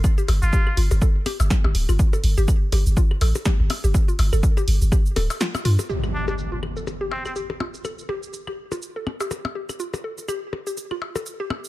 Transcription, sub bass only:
X:1
M:4/4
L:1/16
Q:"Swing 16ths" 1/4=123
K:Cmix
V:1 name="Sub bass" clef=bass
z2 G,,, G,,, z2 G,,, G,,, z3 G,,, z G,,, D,,, G,,, | z2 G,,, G,,, z2 G,,, G,,, z2 A,,, z2 G,,, z G,,, | z2 G,,, G,,, z2 G,,, G,,, z2 D,,, z3 G,, z | z16 |
z16 | z16 |]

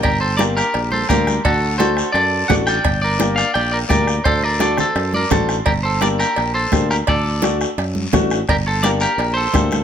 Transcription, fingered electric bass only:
X:1
M:4/4
L:1/8
Q:1/4=171
K:Gm
V:1 name="Fingered electric bass" clef=bass
G,,,4 B,,,2 D,,2 | D,,4 ^F,,2 A,,,2 | G,,,4 B,,,2 D,,2 | D,,4 ^F,,2 A,,,2 |
G,,,4 B,,,2 D,,2 | D,,4 ^F,,2 A,,,2 | G,,,4 B,,,2 D,,2 |]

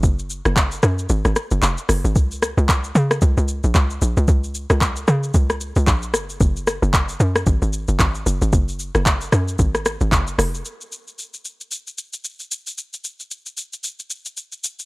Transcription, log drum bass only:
X:1
M:4/4
L:1/16
Q:"Swing 16ths" 1/4=113
K:Gblyd
V:1 name="Log drum bass" clef=bass
G,,,3 G,,,3 G,,2 A,,, A,,, z G,,, F,,, z G,,, A,,, | D,,3 D,,3 D,2 D,, D,,2 B,,, D,,2 B,,, D,, | D,,3 D,,3 D,2 D,,3 D,, B,,,2 G,,,2 | G,,,3 G,,,3 G,,2 A,,, A,,,2 G,,, A,,,2 G,,, A,,, |
G,,,3 G,,,3 G,,2 A,,,3 A,,, G,,,2 F,,,2 | z16 | z16 |]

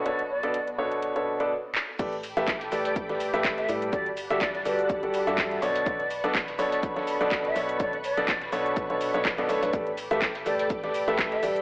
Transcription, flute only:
X:1
M:4/4
L:1/16
Q:"Swing 16ths" 1/4=124
K:Bm
V:1 name="Flute"
d z d3 z8 z3 | z6 d d z4 z e z2 | d z3 d d B z6 z d2- | d4 z2 d d z4 z e z2 |
d z d3 z8 z3 | z6 d d z4 z e z2 |]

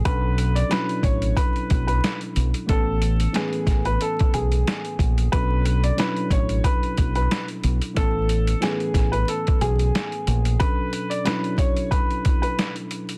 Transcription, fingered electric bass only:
X:1
M:4/4
L:1/16
Q:"Swing 16ths" 1/4=91
K:Bdor
V:1 name="Fingered electric bass" clef=bass
B,,,4 z2 A,,,2 z2 B,,,2 z2 B,,, z | A,,,4 z2 A,,,2 z2 B,,,2 z2 ^A,,,2 | B,,,4 z2 A,,,2 z2 B,,,2 z2 B,,, z | A,,,4 z2 A,,,2 z2 B,,,2 z2 ^A,,,2 |
z16 |]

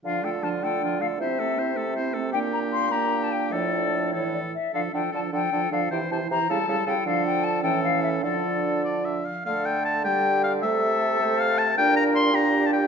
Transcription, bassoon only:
X:1
M:6/8
L:1/8
Q:3/8=103
K:Dm
V:1 name="Bassoon" clef=bass
D,6 | C,6 | B,,6 | A,,4- A,, z |
D, D, D, D, D, D, | C, C, C, ^C, C, C, | D,3 A,,3 | D,4- D, z |
D,6 | C,6 | B,,6 |]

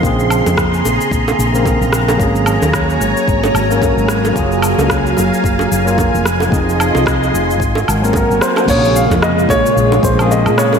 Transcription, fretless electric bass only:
X:1
M:4/4
L:1/16
Q:"Swing 16ths" 1/4=111
K:Bbm
V:1 name="Fretless electric bass" clef=bass
B,,,3 F,,3 B,,, z B,,,2 B,,,3 B,,,3 | A,,,3 E,,3 A,,, z A,,,2 A,,,3 A,,,3 | G,,,3 D,,3 G,,, z G,,,2 G,,,3 F,,,3 | F,,,3 C,,3 F,,,2 A,,,2 A,,,3 A,,, z2 |
B,,,3 F,,3 B,,, z B,,,2 B,,,3 B,,3 |]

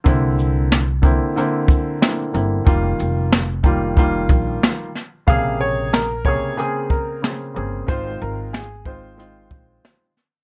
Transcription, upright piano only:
X:1
M:4/4
L:1/16
Q:"Swing 16ths" 1/4=92
K:Bbdor
V:1 name="Upright piano"
z16 | z16 | f2 d2 B2 d2 A2 B2 z4 | c2 B2 A2 c6- c z3 |]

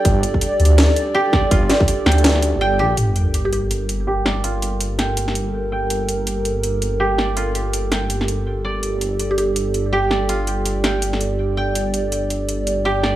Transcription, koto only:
X:1
M:4/4
L:1/8
Q:"Swing 16ths" 1/4=164
K:Gm
V:1 name="Koto"
z6 G d | F z2 g3 g G | z6 G d | F z2 g4 g |
z6 G d | F z2 g4 d | z6 G d | F z2 g4 g |
z6 G d |]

